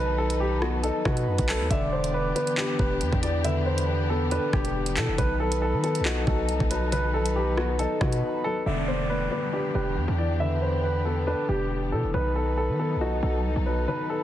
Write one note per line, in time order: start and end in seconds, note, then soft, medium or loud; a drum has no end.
0.00 0.91 B1 loud
0.00 1.72 D#3 loud
0.00 0.83 F#3 medium
0.00 1.67 F#3 medium
0.00 0.62 B3 medium
0.00 8.62 B3 medium
0.00 0.18 D#4 loud
0.00 1.67 D#4 medium
0.00 1.67 A4 medium
0.00 0.14 B4 loud
0.00 0.80 B4 loud
0.18 0.35 A4 medium
0.30 closed hi-hat medium
0.40 0.57 G4 medium
0.62 1.70 B3 medium
0.62 0.79 F#4 medium
0.62 cross-stick medium
0.83 1.71 D#4 loud
0.83 1.00 A4 medium
0.83 1.04 A4 medium
0.83 closed hi-hat medium
1.05 1.29 B2 loud
1.05 1.46 F#4 medium
1.05 1.67 B4 loud
1.05 kick loud
1.05 cross-stick loud
1.17 closed hi-hat medium
1.27 1.38 F#2 loud
1.38 1.62 B1 loud
1.38 kick loud
1.38 closed hi-hat medium
1.49 1.71 F#3 medium
1.49 1.66 A4 loud
1.49 clap loud
1.49 open hi-hat medium
1.60 1.70 D#2 loud
1.70 2.33 E1 loud
1.70 2.79 D3 loud
1.70 5.15 E3 medium
1.70 5.15 D4 medium
1.70 5.15 G4 medium
1.70 2.53 D5 loud
1.70 1.88 E5 medium
1.70 kick loud
1.70 closed hi-hat medium
1.92 2.09 C5 medium
2.04 closed hi-hat medium
2.14 2.31 B4 medium
2.35 3.44 B3 medium
2.35 2.53 B4 medium
2.35 closed hi-hat medium
2.47 closed hi-hat medium
2.57 3.66 D4 loud
2.57 2.74 G4 medium
2.57 2.78 B4 medium
2.57 clap loud
2.79 3.03 E1 loud
2.79 3.00 G4 medium
2.79 3.20 B4 medium
2.79 kick loud
3.01 3.12 E2 loud
3.01 closed hi-hat medium
3.13 4.39 E2 loud
3.13 kick loud
3.23 4.32 E3 medium
3.23 3.40 D5 medium
3.23 closed hi-hat medium
3.44 4.53 D3 loud
3.44 4.27 B4 loud
3.44 3.61 E5 medium
3.44 closed hi-hat medium
3.66 3.83 C5 medium
3.78 closed hi-hat medium
3.88 4.05 B4 medium
4.09 5.18 B3 medium
4.09 4.27 A4 medium
4.31 5.18 D4 loud
4.31 4.52 A4 medium
4.31 4.48 B4 medium
4.31 closed hi-hat medium
4.53 4.98 E1 loud
4.53 4.94 G4 medium
4.53 4.74 G4 medium
4.53 kick loud
4.53 cross-stick loud
4.65 closed hi-hat medium
4.86 closed hi-hat medium
4.97 5.10 B2 loud
4.97 5.18 E3 medium
4.97 5.14 A4 medium
4.97 clap loud
4.97 closed hi-hat loud
5.08 5.18 E1 loud
5.18 5.75 B1 loud
5.18 6.27 D#3 loud
5.18 8.63 F#3 medium
5.18 8.63 D#4 medium
5.18 8.63 A4 medium
5.18 5.35 B4 medium
5.18 6.01 B4 loud
5.18 kick loud
5.18 closed hi-hat medium
5.40 5.57 A4 medium
5.52 closed hi-hat medium
5.62 5.79 A4 medium
5.73 6.02 D#3 loud
5.83 6.92 B3 medium
5.83 6.01 A4 medium
5.83 closed hi-hat medium
5.95 closed hi-hat medium
6.00 6.26 B1 loud
6.05 7.14 D#4 loud
6.05 6.22 F#4 medium
6.05 6.26 A4 medium
6.05 clap loud
6.27 6.50 B1 loud
6.27 6.48 F#4 medium
6.27 6.68 A4 medium
6.27 kick loud
6.49 6.60 C2 loud
6.49 closed hi-hat medium
6.60 7.87 B1 loud
6.60 kick loud
6.70 7.79 F#3 medium
6.70 6.87 B4 medium
6.70 closed hi-hat loud
6.92 8.01 D#3 loud
6.92 7.09 B4 medium
6.92 7.75 B4 loud
6.92 closed hi-hat medium
7.14 7.31 A4 medium
7.26 closed hi-hat medium
7.36 7.53 G4 medium
7.57 8.66 B3 medium
7.57 7.74 F#4 medium
7.57 cross-stick medium
7.79 8.66 D#4 loud
7.79 7.96 A4 medium
7.79 8.00 A4 medium
7.79 closed hi-hat medium
8.01 8.23 B2 loud
8.01 8.42 F#4 medium
8.01 8.62 B4 loud
8.01 kick loud
8.01 cross-stick loud
8.12 closed hi-hat medium
8.44 8.66 F#3 medium
8.44 8.61 A4 loud
8.66 9.29 E1 loud
8.66 9.75 D3 medium
8.66 12.11 E3 medium
8.66 14.23 B3 medium
8.66 12.11 D4 medium
8.66 12.11 G4 medium
8.66 9.49 D5 loud
8.66 8.83 E5 medium
8.66 downlifter medium
8.88 9.05 C5 medium
9.10 9.27 B4 medium
9.31 10.40 B3 medium
9.31 9.48 B4 medium
9.53 10.62 D4 medium
9.53 9.70 G4 medium
9.53 9.74 B4 medium
9.75 9.98 E1 loud
9.75 9.96 G4 medium
9.75 10.16 B4 medium
9.97 10.08 E2 loud
10.08 11.35 E2 loud
10.18 11.27 E3 medium
10.18 10.35 D5 medium
10.40 11.49 D3 medium
10.40 11.23 B4 loud
10.40 10.57 E5 medium
10.62 10.79 C5 medium
10.84 11.01 B4 medium
11.05 12.14 B3 medium
11.05 11.22 A4 medium
11.27 12.14 D4 loud
11.27 11.48 A4 medium
11.27 11.44 B4 medium
11.49 11.94 E1 loud
11.49 11.90 G4 medium
11.49 11.70 G4 medium
11.92 12.05 B2 medium
11.92 12.14 E3 medium
11.92 12.09 A4 medium
12.04 12.14 E1 loud
12.14 12.71 B1 loud
12.14 13.23 D#3 loud
12.14 14.23 F#3 medium
12.14 14.23 D#4 medium
12.14 14.23 A4 medium
12.14 12.31 B4 medium
12.14 12.97 B4 loud
12.36 12.53 A4 medium
12.57 12.74 A4 medium
12.69 12.97 D#3 loud
12.79 13.88 B3 medium
12.79 12.96 A4 medium
12.96 13.21 B1 loud
13.01 14.10 D#4 loud
13.01 13.18 F#4 medium
13.01 13.22 A4 medium
13.23 13.46 B1 loud
13.23 13.44 F#4 medium
13.23 13.64 A4 medium
13.44 13.55 C2 loud
13.56 13.87 B1 loud
13.66 14.23 F#3 medium
13.66 13.83 B4 medium
13.88 14.23 D#3 medium
13.88 14.05 B4 medium
13.88 14.23 B4 loud
14.10 14.23 A4 medium